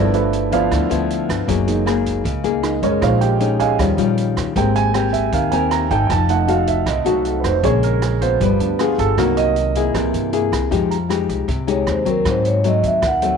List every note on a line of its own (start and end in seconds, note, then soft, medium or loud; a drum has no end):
0.00 0.67 G1 medium
0.00 0.69 G2 medium
0.00 0.49 F3 soft
0.00 0.49 B3 soft
0.00 0.14 D4 soft
0.00 0.49 E4 medium
0.00 0.13 A4 medium
0.00 0.13 B4 soft
0.00 0.14 D5 medium
0.13 0.68 F3 soft
0.13 0.68 A3 soft
0.13 0.68 B3 soft
0.13 0.69 E4 medium
0.13 0.50 A4 medium
0.13 0.50 B4 medium
0.13 0.49 E5 medium
0.13 closed hi-hat soft
0.33 closed hi-hat soft
0.52 0.87 F3 medium
0.52 0.87 B3 medium
0.52 0.87 E4 medium
0.52 0.72 F4 medium
0.52 0.72 B4 medium
0.52 0.72 D5 medium
0.52 0.71 F5 medium
0.52 kick soft
0.52 closed hi-hat soft
0.71 0.89 D2 medium
0.71 1.46 D3 soft
0.71 0.88 F3 soft
0.71 0.88 A3 soft
0.71 0.89 B3 soft
0.71 0.89 E4 soft
0.71 kick medium
0.71 cross-stick medium
0.71 closed hi-hat medium
0.90 1.26 D2 medium
0.90 1.45 F3 medium
0.90 1.45 B3 medium
0.90 1.45 E4 medium
0.90 closed hi-hat soft
1.10 closed hi-hat soft
1.29 1.47 G1 medium
1.29 kick soft
1.29 cross-stick medium
1.29 closed hi-hat soft
1.48 2.21 F#1 medium
1.48 2.23 F#3 medium
1.48 1.83 A#3 soft
1.48 1.84 D#4 medium
1.48 1.84 G#4 medium
1.48 kick medium
1.48 closed hi-hat medium
1.67 2.22 G#3 soft
1.67 2.22 A#3 soft
1.67 2.22 D#4 soft
1.67 closed hi-hat soft
1.86 2.24 A#3 medium
1.86 2.24 D#4 medium
1.86 2.25 G#4 medium
1.86 cross-stick medium
1.86 closed hi-hat soft
2.06 kick soft
2.06 closed hi-hat soft
2.24 2.43 C#2 medium
2.24 2.99 C#3 medium
2.24 kick medium
2.24 closed hi-hat soft
2.44 2.80 C#2 medium
2.44 2.79 A#3 medium
2.44 2.79 D#4 medium
2.44 2.79 G#4 medium
2.44 closed hi-hat soft
2.63 2.80 G#3 soft
2.63 2.81 A#3 soft
2.63 2.81 D#4 soft
2.63 cross-stick medium
2.63 closed hi-hat soft
2.82 3.00 F#1 medium
2.82 3.37 G#3 medium
2.82 3.37 C#4 medium
2.82 3.01 C#4 soft
2.82 3.37 D#4 medium
2.82 3.02 G#4 soft
2.82 3.02 A#4 soft
2.82 3.02 C#5 medium
2.82 kick soft
2.82 closed hi-hat soft
3.01 3.75 A#1 medium
3.01 3.76 A#2 medium
3.01 3.56 G#3 soft
3.01 3.57 C#4 soft
3.01 3.57 D#4 soft
3.01 3.21 F4 soft
3.01 3.21 C5 soft
3.01 3.21 C#5 medium
3.01 3.21 F5 medium
3.01 kick medium
3.01 cross-stick medium
3.01 closed hi-hat medium
3.21 3.57 G4 medium
3.21 3.57 G5 medium
3.21 closed hi-hat soft
3.40 3.77 G#3 medium
3.40 3.77 C#4 soft
3.40 3.77 D#4 medium
3.40 closed hi-hat soft
3.60 3.71 G#4 medium
3.60 3.71 D#5 medium
3.60 3.71 F5 medium
3.60 3.71 G#5 medium
3.60 kick soft
3.60 closed hi-hat soft
3.78 3.97 D#2 medium
3.78 4.54 D#3 medium
3.78 4.04 F3 soft
3.78 3.95 G3 soft
3.78 4.05 G3 soft
3.78 3.95 C#4 medium
3.78 4.05 C#4 soft
3.78 3.95 F4 medium
3.78 kick medium
3.78 cross-stick medium
3.78 closed hi-hat medium
3.97 4.33 A#1 medium
3.97 4.52 G3 medium
3.97 4.53 C#4 medium
3.97 4.53 F4 medium
3.97 closed hi-hat soft
4.17 closed hi-hat soft
4.36 4.54 D#2 medium
4.36 kick soft
4.36 cross-stick medium
4.36 closed hi-hat soft
4.56 5.29 G#1 medium
4.56 5.31 G#3 medium
4.56 5.49 A#3 soft
4.56 4.91 C4 soft
4.56 5.50 C4 soft
4.56 4.91 G4 soft
4.56 4.92 A#4 medium
4.56 4.75 G5 medium
4.56 kick medium
4.56 closed hi-hat medium
4.76 4.94 G#5 medium
4.76 closed hi-hat soft
4.94 5.49 C4 medium
4.94 5.49 G4 medium
4.94 5.49 A#4 medium
4.94 5.13 G5 medium
4.94 cross-stick medium
4.94 closed hi-hat soft
5.13 5.32 E5 medium
5.13 kick soft
5.13 closed hi-hat soft
5.32 5.50 D#2 medium
5.32 6.08 D#3 medium
5.32 5.52 F5 medium
5.32 kick medium
5.32 closed hi-hat medium
5.51 5.88 D#2 medium
5.51 5.69 G3 soft
5.51 5.68 A#3 soft
5.51 5.69 C4 soft
5.51 5.87 C4 medium
5.51 5.88 G4 medium
5.51 5.88 A#4 medium
5.51 5.70 G#5 medium
5.51 closed hi-hat soft
5.71 5.90 A#5 medium
5.71 cross-stick medium
5.71 closed hi-hat soft
5.90 6.08 G#1 medium
5.90 6.45 D#4 medium
5.90 6.46 A4 medium
5.90 6.09 G5 medium
5.90 kick soft
5.90 closed hi-hat soft
6.07 6.82 F1 medium
6.07 6.85 F3 soft
6.07 6.09 G#5 medium
6.07 kick medium
6.07 cross-stick medium
6.07 closed hi-hat medium
6.12 6.29 A5 medium
6.29 7.05 A3 soft
6.29 7.05 D#4 soft
6.29 6.48 F#5 medium
6.29 closed hi-hat soft
6.48 6.86 D#4 medium
6.48 6.86 F#4 medium
6.48 6.86 A4 medium
6.48 6.67 F5 medium
6.48 closed hi-hat soft
6.67 6.86 E5 medium
6.67 kick soft
6.67 closed hi-hat soft
6.86 7.04 C2 medium
6.86 7.61 C3 medium
6.86 7.06 D#5 medium
6.86 kick medium
6.86 cross-stick medium
6.86 closed hi-hat medium
7.05 7.41 C2 medium
7.05 7.23 F#3 soft
7.05 7.23 A3 soft
7.05 7.60 D#4 medium
7.05 7.23 D#4 soft
7.05 7.60 F#4 medium
7.05 7.25 F#4 soft
7.05 7.60 A4 medium
7.05 closed hi-hat soft
7.25 7.45 A4 soft
7.25 closed hi-hat soft
7.40 7.62 F1 medium
7.40 7.43 B4 medium
7.40 kick soft
7.44 7.63 C5 medium
7.44 cross-stick medium
7.44 closed hi-hat soft
7.63 8.36 A#1 medium
7.63 7.89 C#3 soft
7.63 7.89 G#3 soft
7.63 8.38 A#3 medium
7.63 8.02 C#4 medium
7.63 8.02 G#4 medium
7.63 8.02 C5 medium
7.63 7.83 C#5 medium
7.63 kick medium
7.63 closed hi-hat medium
7.83 8.02 A#4 medium
7.83 closed hi-hat soft
8.02 8.21 G#4 medium
8.02 cross-stick medium
8.02 closed hi-hat soft
8.21 8.76 B3 medium
8.21 8.76 F4 medium
8.21 8.40 C5 medium
8.21 kick soft
8.21 closed hi-hat soft
8.40 8.58 G1 medium
8.40 9.13 F3 soft
8.40 9.16 G3 medium
8.40 9.14 B3 soft
8.40 8.60 B4 medium
8.40 kick medium
8.40 closed hi-hat medium
8.59 8.95 D2 medium
8.59 8.79 D4 soft
8.59 closed hi-hat soft
8.79 9.14 B3 medium
8.79 9.15 F4 medium
8.79 8.98 F4 medium
8.79 9.15 G#4 medium
8.79 cross-stick medium
8.79 closed hi-hat soft
8.98 9.16 G1 medium
8.98 9.17 A4 medium
8.98 kick soft
8.98 closed hi-hat soft
9.17 9.90 C2 medium
9.17 9.92 C3 medium
9.17 9.72 D#3 soft
9.17 9.73 F#3 soft
9.17 9.56 A#3 medium
9.17 9.73 A#3 soft
9.17 9.56 D#4 medium
9.17 9.56 F#4 medium
9.17 9.37 A#4 medium
9.17 kick medium
9.17 cross-stick medium
9.17 closed hi-hat soft
9.37 9.48 D#5 medium
9.37 closed hi-hat soft
9.56 closed hi-hat soft
9.75 10.30 A#3 medium
9.75 10.30 E4 medium
9.75 10.31 G#4 medium
9.75 kick soft
9.75 closed hi-hat soft
9.94 10.12 C2 medium
9.94 10.70 C3 medium
9.94 10.67 E3 soft
9.94 10.68 A#3 soft
9.94 10.67 G#4 soft
9.94 kick medium
9.94 cross-stick medium
9.94 closed hi-hat soft
10.14 10.49 G2 medium
10.14 closed hi-hat soft
10.33 10.68 A#3 medium
10.33 10.68 E4 soft
10.33 10.68 G#4 medium
10.33 closed hi-hat soft
10.52 10.70 C2 medium
10.52 kick soft
10.52 cross-stick medium
10.52 closed hi-hat soft
10.71 11.25 F2 medium
10.71 11.46 F3 soft
10.71 10.96 G#3 medium
10.71 10.96 D#4 soft
10.71 10.96 G4 medium
10.71 kick medium
10.71 closed hi-hat medium
10.91 11.43 A#5 medium
10.91 closed hi-hat soft
11.09 11.48 G#3 soft
11.09 11.48 D#4 soft
11.09 11.48 G4 medium
11.09 cross-stick medium
11.09 closed hi-hat soft
11.29 11.47 C2 medium
11.29 kick soft
11.29 closed hi-hat soft
11.48 11.84 C2 medium
11.48 12.23 C3 medium
11.48 kick medium
11.48 closed hi-hat soft
11.67 12.03 G#3 medium
11.67 12.03 D#4 medium
11.67 12.03 G4 medium
11.67 11.88 C#5 medium
11.67 closed hi-hat soft
11.86 12.22 D#2 medium
11.86 12.07 C5 medium
11.86 cross-stick medium
11.86 closed hi-hat soft
12.05 12.60 F#3 medium
12.05 12.61 C4 medium
12.05 12.26 A#4 medium
12.05 kick soft
12.05 closed hi-hat soft
12.25 13.00 G#2 medium
12.25 12.79 G#2 medium
12.25 kick medium
12.25 cross-stick medium
12.25 closed hi-hat medium
12.29 12.46 C5 medium
12.45 12.64 C#5 medium
12.45 closed hi-hat soft
12.64 13.02 F#3 medium
12.64 13.02 A3 soft
12.64 13.03 C4 medium
12.64 12.84 D#5 medium
12.64 closed hi-hat soft
12.83 13.01 D#2 medium
12.83 13.03 E5 medium
12.83 kick soft
12.83 closed hi-hat soft
13.02 13.37 D#2 medium
13.02 13.37 D#3 medium
13.02 kick medium
13.02 cross-stick medium
13.02 closed hi-hat medium
13.06 13.37 F#5 medium
13.22 13.37 F#3 medium
13.22 13.37 A3 medium
13.22 13.37 C4 medium
13.22 closed hi-hat soft